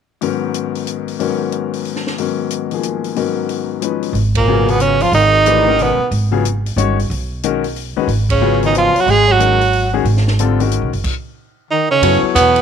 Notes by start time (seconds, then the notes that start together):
0.21 G#2 D#3 F#3 B3 C#4 A#4, open hi-hat
0.54 closed hi-hat
0.75 open hi-hat
0.87 closed hi-hat
1.08 open hi-hat
1.19 G#2 D#3 F#3 B3 C#4 A#4, open hi-hat
1.52 closed hi-hat
1.73 open hi-hat
1.85 open hi-hat
1.96 snare
2.07 snare
2.18 G#2 D#3 F#3 B3 C#4 A#4, open hi-hat
2.50 closed hi-hat
2.71 D#3 F3 A#3 G#4, open hi-hat
2.83 closed hi-hat
3.04 open hi-hat
3.16 G#2 D#3 F#3 B3 C#4 A#4, open hi-hat
3.49 open hi-hat
3.81 F3 G#3 C#4 D#4 B4, closed hi-hat
4.03 open hi-hat
4.13 G#1, open hi-hat
4.35 A#2 A#3, kick, ride
4.48 C#3 F#3 B3 F4 G#4
4.68 B2 B3, open hi-hat
4.80 C#3 C#4, closed hi-hat
5.00 F3 F4, open hi-hat
5.12 G#1 D#3 D#4, open hi-hat
5.46 E3 A3 D4 G4 B4, closed hi-hat
5.68 D#3 G#3 C#4 F#4 A#4
5.79 B2 B3, open hi-hat
5.98 muted upright bass stroke
6.11 G#1, open hi-hat
6.31 C#3 F#3 B3 F4 G#4
6.45 closed hi-hat
6.66 open hi-hat
6.76 G1 D#3 G#3 C#4 F#4 C#5, closed hi-hat
6.99 open hi-hat
7.10 B1, open hi-hat
7.43 D#3 G#3 C#4 F#4 A#4, closed hi-hat
7.64 open hi-hat
7.76 open hi-hat
7.96 D#3 G#3 C#4 F#4 B4, muted upright bass stroke
8.08 G#1, open hi-hat
8.29 C#3 C#4, kick, ride
8.41 C#3 F#3 B3 F4 G#4
8.62 D#3 D#4, open hi-hat
8.75 F3 F4, closed hi-hat
8.94 F#3, muted upright bass stroke, open hi-hat
9.00 F#4
9.06 G#1 G#3, open hi-hat
9.11 G#4
9.28 F#3
9.32 F#4
9.39 D#3 G#3 C#4 F#4 A#4, closed hi-hat
9.61 open hi-hat
9.73 open hi-hat
9.93 D#3 G#3 C#4 F#4 G#4
10.05 G#1, open hi-hat
10.17 snare
10.28 snare
10.39 D3 G3 C4 F4 A4, closed hi-hat
10.60 D#3 G#3 C#4 F#4 A#4, open hi-hat
10.72 closed hi-hat
10.82 B1
10.93 F#1, open hi-hat
11.04 kick, crash
11.71 D#3 D#4
11.91 C#3 C#4
12.02 F#2 F#3 B3 E4 A4 C#5, ride
12.22 muted upright bass stroke
12.35 E2 B2 B3, hi-hat pedal, ride
12.56 ride